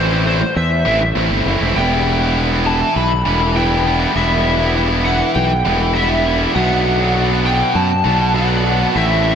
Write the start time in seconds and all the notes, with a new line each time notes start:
Already playing: A1 A2 E3 A3 C4 E4 C5
0.11 A3 C4 E4
0.25 E3 A3 C4 E4 C5
0.41 muted distorted electric guitar stroke
0.56 E2 E5
0.85 A1 E3 A3 C4 E4
1.01 muted distorted electric guitar stroke
1.15 A1 A2 E3 A3 C4 E4
1.31 G1
1.46 F#1 E3 A3 C4 E4
1.61 E1 A3 C4 E4
1.76 E1 E3 G3 B3 E4 G5
2.21 G3 B3 E4
2.36 E3 G3 B3 E4
2.51 G3 B3 E4
2.65 E3 G3 B3 E4 A5
2.81 muted distorted electric guitar stroke
2.96 B1 B5
3.26 E1 E3 G3 B3 E4
3.42 muted distorted electric guitar stroke
3.55 E3 G3 B3 E4 G5
3.85 E3 G3 B3 E4
3.99 G3 B3 E4
4.15 E1 E3 G3 B3 E4 E5
4.60 G3 B3 E4
4.75 E3 G3 B3 E4
4.90 G3 B3 E4
5.05 E3 G3 B3 E4 F#5
5.21 muted distorted electric guitar stroke
5.35 B1 G5
5.65 E1 E3 G3 B3 E4
5.80 muted distorted electric guitar stroke
5.95 E3 G3 B3 E4 E5
6.25 E3 G3 B3 E4
6.40 G3 B3 E4
6.55 B1 B2 F#3 B3 D4 F#5
7.00 F#3 B3 D4
7.14 B2 F#3 B3 D4
7.29 F#3 B3 D4
7.44 B2 F#3 B3 D4 G5
7.61 muted distorted electric guitar stroke
7.75 F#2 A5
8.04 B1 B2 F#3 B3 D4
8.20 muted distorted electric guitar stroke
8.34 B2 F#3 B3 D4 F#5
8.64 B2 F#3 B3 D4
8.79 F#3 B3 D4
8.95 A1 A2 E3 A3 C4 E4 E5